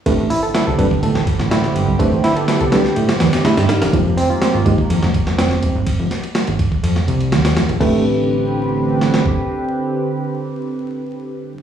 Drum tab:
CC |----------------|----------------|----------------|----------------|
RD |x---x-x-x-x-x-x-|x-xxxxx-xxxxxxxx|x---x-x-x-x-x-x-|x-xxxxx-x-xxxxxx|
HH |--o-------------|----------------|--o-------------|----------------|
SD |----o----o-ooo--|--o-o-oo-ooooooo|----o----o-ooo--|--o-o----o--ooo-|
BD |o-----oo--o-----|o---------------|o-----oo--o-----|o-----oo--------|

CC |x---------------|----------------|
RD |----------------|----------------|
HH |----------------|----------------|
SD |----------oo----|----------------|
BD |o-----------o---|----------------|